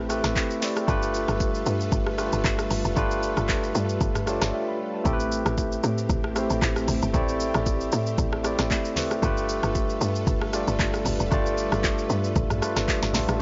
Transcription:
Already playing: A1 A3 C4 E4 G4 B4
0.09 A3 C4 E4 G4 B4, cross-stick, shaker
0.24 A1, cross-stick, snare, shaker
0.36 kick, clap, shaker
0.50 shaker
0.61 A3 C4 E4 G4 D5, snare, open hi-hat, shaker
0.76 cross-stick, shaker
0.87 G1 G3 A3 D4 F4 G4 A4 B4, kick, shaker
1.02 shaker
1.14 shaker
1.28 G1, cross-stick, shaker
1.40 kick, shaker
1.55 shaker
1.66 G2, shaker
1.80 shaker
1.92 G1, kick, shaker
2.07 cross-stick
2.18 A3 D4 F4 G4 B4, cross-stick, shaker
2.33 G1, shaker
2.44 G1, kick, clap, shaker
2.59 cross-stick, shaker
2.71 G1, open hi-hat, shaker
2.85 F1, shaker
2.96 G1 A3 D4 F4 G4 B4, kick, shaker
3.11 shaker
3.23 shaker
3.37 G1, cross-stick, shaker
3.49 kick, clap, shaker
3.63 shaker
3.75 G2, shaker
3.89 shaker
4.01 G1, kick, shaker
4.15 cross-stick, mid tom, shaker
4.26 A3 D4 F4 G4 C#5 A5, cross-stick, shaker
4.35 D5
4.41 G1, cross-stick, snare, shaker
4.54 D5 E5 G5
4.68 F5 B5
4.94 E5 A5
5.04 A1 A3 C4 E4 G4 A4, kick, low conga, shaker
5.13 B4
5.20 shaker
5.32 shaker
5.46 A1, cross-stick, shaker
5.58 kick, high bongo, shaker
5.72 shaker
5.83 A2, low bongo, shaker
5.98 shaker
6.09 A1, kick, low conga, shaker
6.24 cross-stick
6.35 A3 C4 E4 G4 C5, cross-stick, shaker
6.50 A1, low bongo, shaker
6.62 A1, kick, clap, high bongo, shaker
6.76 cross-stick, shaker
6.88 A1, open hi-hat, low bongo, low conga, shaker
7.02 G1, high bongo, shaker
7.13 A1 A3 C4 E4 G4 D5, kick, low conga, shaker
7.28 shaker
7.40 shaker
7.54 A1, cross-stick, shaker
7.66 kick, high bongo, shaker
7.81 shaker
7.92 A2, low bongo, shaker
8.07 shaker
8.18 A1, kick, low conga, shaker
8.33 cross-stick
8.44 A3 C4 E4 G4 D5, cross-stick, shaker
8.59 A1, cross-stick, snare, low bongo, shaker
8.71 kick, clap, high bongo, shaker
8.85 shaker
8.96 A3 C4 E4 G4 B4, snare, open hi-hat, low bongo, low conga, shaker
9.11 cross-stick, high bongo, shaker
9.22 G1 G3 A3 D4 F4 G4 A4 B4, kick, low conga, shaker
9.37 shaker
9.49 shaker
9.63 G1, cross-stick, shaker
9.75 kick, high bongo, shaker
9.90 shaker
10.01 G2, low bongo, shaker
10.15 shaker
10.27 G1, kick, low conga, shaker
10.41 cross-stick
10.53 A3 D4 F4 G4 D5, cross-stick, shaker
10.68 G1, low bongo, shaker
10.79 G1, kick, clap, high bongo, shaker
10.94 cross-stick, shaker
11.05 G1, open hi-hat, low bongo, low conga, shaker
11.20 F1, high bongo, shaker
11.31 G1 A3 D4 F4 G4 D5, kick, low conga, shaker
11.46 shaker
11.58 shaker
11.72 G1, cross-stick, shaker
11.84 kick, clap, high bongo, shaker
11.98 shaker
12.10 G2, low bongo, shaker
12.24 shaker
12.35 A1, kick, low conga, shaker
12.50 A1, cross-stick, mid tom, shaker
12.61 A3 D4 F4 G4 B4, cross-stick, shaker
12.76 G1, cross-stick, snare, low bongo, shaker
12.88 kick, clap, high bongo, shaker
13.03 G1, snare, shaker
13.13 A1 A3 D4 F4 G4 A4, snare, open hi-hat, low bongo, low conga, shaker
13.29 A1, cross-stick, high bongo, shaker

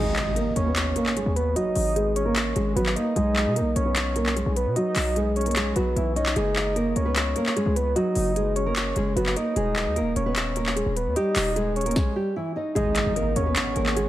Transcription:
Already playing: G#1 G#3 G#4 D#5, impact
0.16 clap
0.36 A#3 A#4, closed hi-hat
0.56 D#2 C#5, closed hi-hat
0.66 B3 B4
0.76 clap, closed hi-hat
0.96 A#3 A#4, closed hi-hat
1.06 clap
1.16 G#3 G#4, closed hi-hat
1.26 D#2
1.36 B4, closed hi-hat
1.56 F#3 F#4 D#5, closed hi-hat
1.75 G#1, open hi-hat
1.96 G#3 G#4, closed hi-hat
2.16 C#5, closed hi-hat
2.26 A#3 A#4
2.36 clap, closed hi-hat
2.56 G#1 G#3 G#4, closed hi-hat
2.76 G#1 F#3 F#4 B4, closed hi-hat
2.86 clap
2.96 A#3 A#4 D#5, closed hi-hat
3.16 B1 G#3 G#4 D#5, closed hi-hat
3.36 clap
3.46 B2
3.56 A#3 A#4, closed hi-hat
3.61 B1
3.76 B1 C#5, closed hi-hat
3.86 B3 B4
3.96 clap, closed hi-hat
4.16 A#3 A#4, closed hi-hat
4.26 clap
4.36 G#3 G#4, closed hi-hat
4.46 B1
4.56 B4, closed hi-hat
4.66 B2
4.76 F#3 F#4 D#5, closed hi-hat
4.95 B1, clap, open hi-hat
5.16 G#3 G#4, closed hi-hat
5.36 C#5, closed hi-hat
5.41 closed hi-hat
5.46 A#3 A#4, closed hi-hat
5.51 closed hi-hat
5.56 G#3 G#4, clap, closed hi-hat
5.76 B1 F#3 F#4 B4, closed hi-hat
5.96 B1 E3 E4, closed hi-hat
6.16 D#4 C#5 D#5, closed hi-hat
6.26 clap
6.36 F#1 G#3 G#4 D#5, closed hi-hat
6.56 clap
6.76 A#3 A#4, closed hi-hat
6.96 C#2 C#5, closed hi-hat
7.05 B3 B4
7.16 clap, closed hi-hat
7.36 A#3 A#4, closed hi-hat
7.46 clap
7.56 G#3 G#4, closed hi-hat
7.66 C#2
7.76 B4, closed hi-hat
7.96 F#3 F#4 D#5, closed hi-hat
8.15 F#1, open hi-hat
8.36 G#3 G#4, closed hi-hat
8.56 C#5, closed hi-hat
8.66 A#3 A#4
8.76 clap, closed hi-hat
8.96 F#1 G#3 G#4, closed hi-hat
9.16 F#1 F#3 F#4 B4, closed hi-hat
9.26 clap
9.36 A#3 A#4 D#5, closed hi-hat
9.56 D#1 G#3 G#4 D#5, closed hi-hat
9.76 clap
9.86 D#2
9.96 A#3 A#4, closed hi-hat
10.01 D#1
10.16 D#1 C#5, closed hi-hat
10.26 B3 B4
10.36 clap, closed hi-hat
10.56 A#3 A#4, closed hi-hat
10.66 clap
10.76 G#3 G#4, closed hi-hat
10.86 D#1
10.96 B4, closed hi-hat
11.06 D#2
11.16 G3 G4 D#5, closed hi-hat
11.35 D#1, clap, open hi-hat
11.56 G#3 G#4, closed hi-hat
11.76 C#5, closed hi-hat
11.81 closed hi-hat
11.86 A#3 A#4, closed hi-hat
11.91 closed hi-hat
11.96 G#3 G#4, kick, snare
12.16 G3 G4
12.36 E3 E4
12.56 D#4 D#5
12.75 G#1 G#3 G#4 D#5 F#5 G#5, closed hi-hat, impact
12.96 clap, closed hi-hat
13.06 G#1
13.16 A#3 A#4, closed hi-hat
13.36 D#2 C#5, closed hi-hat
13.46 B3 B4
13.56 clap, closed hi-hat
13.76 G#1 A#3 A#4, closed hi-hat
13.86 clap
13.96 G#3 G#4, closed hi-hat

